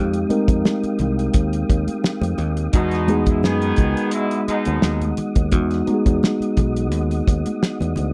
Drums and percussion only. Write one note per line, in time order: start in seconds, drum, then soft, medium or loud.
0.14 closed hi-hat soft
0.14 muted conga soft
0.30 closed hi-hat medium
0.30 high conga medium
0.48 kick loud
0.48 closed hi-hat medium
0.65 snare loud
0.65 high conga medium
0.84 closed hi-hat soft
0.84 muted conga soft
0.99 closed hi-hat medium
0.99 low conga medium
1.19 closed hi-hat soft
1.34 kick medium
1.34 closed hi-hat loud
1.34 muted conga soft
1.53 closed hi-hat medium
1.53 muted conga soft
1.70 kick medium
1.70 closed hi-hat medium
1.88 closed hi-hat medium
1.88 high conga medium
2.04 snare loud
2.04 muted conga soft
2.22 closed hi-hat medium
2.22 muted conga soft
2.22 high conga medium
2.38 closed hi-hat medium
2.38 low conga medium
2.57 closed hi-hat medium
2.73 kick loud
2.73 closed hi-hat medium
2.73 muted conga soft
2.73 low conga medium
2.91 snare soft
2.91 closed hi-hat soft
3.08 closed hi-hat medium
3.08 high conga loud
3.26 kick loud
3.26 closed hi-hat medium
3.43 snare loud
3.43 high conga medium
3.62 closed hi-hat soft
3.62 muted conga soft
3.76 kick medium
3.76 closed hi-hat medium
3.76 low conga medium
3.97 closed hi-hat medium
4.11 closed hi-hat loud
4.31 closed hi-hat medium
4.48 closed hi-hat medium
4.65 closed hi-hat medium
4.65 high conga medium
4.82 snare loud
4.82 muted conga soft
5.01 closed hi-hat soft
5.01 muted conga soft
5.01 high conga medium
5.17 closed hi-hat medium
5.17 low conga medium
5.35 kick loud
5.35 closed hi-hat medium
5.52 kick loud
5.52 closed hi-hat loud
5.52 low conga medium
5.71 snare soft
5.71 closed hi-hat soft
5.71 muted conga soft
5.87 closed hi-hat medium
5.87 high conga medium
6.06 kick loud
6.06 closed hi-hat medium
6.23 snare loud
6.23 muted conga soft
6.23 high conga medium
6.42 closed hi-hat soft
6.42 muted conga soft
6.57 kick loud
6.57 closed hi-hat medium
6.57 low conga medium
6.76 closed hi-hat medium
6.92 closed hi-hat loud
6.92 muted conga soft
7.11 closed hi-hat medium
7.28 kick loud
7.28 closed hi-hat medium
7.46 closed hi-hat medium
7.46 high conga medium
7.63 snare loud
7.63 muted conga soft
7.80 closed hi-hat medium
7.80 high conga medium
7.96 closed hi-hat medium
7.96 low conga medium